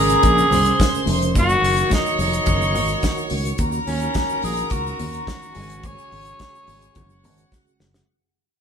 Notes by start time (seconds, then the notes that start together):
Already playing: G#1 C#3 A#3 C#4 G#4 A#4 A#5
0.09 closed hi-hat, shaker
0.23 A#1, kick, closed hi-hat, muted conga, shaker
0.38 shaker
0.50 C2 C5 C6, open hi-hat, low conga, shaker
0.65 closed hi-hat, shaker
0.79 kick, snare, closed hi-hat, high conga, shaker
0.95 shaker
1.06 F1, open hi-hat, high conga
1.22 closed hi-hat, shaker
1.34 F#1 D#3 F#4 C#5 C#6, kick, closed hi-hat, muted conga, shaker
1.39 F#4
1.49 shaker
1.62 F#1, open hi-hat
1.76 closed hi-hat, shaker
1.90 kick, snare, closed hi-hat, high conga, shaker
1.94 D#4
2.06 shaker
2.19 F1 D#4, open hi-hat, muted conga, shaker
2.33 closed hi-hat, shaker
2.46 F#1, kick, closed hi-hat, muted conga, low conga, shaker
2.62 shaker
2.75 G#1, open hi-hat, low conga, shaker
2.87 closed hi-hat, shaker
3.03 kick, snare, closed hi-hat, high conga, shaker
3.17 shaker
3.30 C#2, open hi-hat, high conga
3.45 closed hi-hat, shaker
3.58 D#2 C#4 A#4 A#5, kick, closed hi-hat, muted conga, shaker
3.72 shaker
3.87 D#2 C#4, open hi-hat, muted conga
4.00 closed hi-hat, shaker
4.14 kick, snare, closed hi-hat, high conga, shaker
4.29 shaker
4.43 A#1 G#4, open hi-hat, muted conga, shaker
4.57 closed hi-hat, shaker
4.70 C#2 F#4, kick, closed hi-hat, muted conga, shaker
4.87 shaker
4.99 D#2, open hi-hat, low conga, shaker
5.13 closed hi-hat, shaker
5.27 kick, snare, closed hi-hat, high conga, shaker
5.42 shaker
5.55 G#1 C#3 G#3 F#4 G#4 G#5, open hi-hat, high conga
5.70 closed hi-hat, shaker
5.83 C#5, kick, closed hi-hat, muted conga, shaker
5.98 shaker
6.12 G#1, open hi-hat
6.25 closed hi-hat, shaker
6.39 kick, snare, closed hi-hat, high conga, shaker
6.55 shaker
6.67 G#1, open hi-hat, muted conga, shaker
6.82 closed hi-hat, shaker
6.95 F#1 F#4 F#5, kick, closed hi-hat, muted conga, low conga, shaker
7.10 shaker
7.24 G#1, open hi-hat, low conga, shaker
7.37 closed hi-hat, shaker
7.52 kick, snare, high conga, shaker
7.67 shaker
7.80 F#1, snare, high conga
7.94 snare, shaker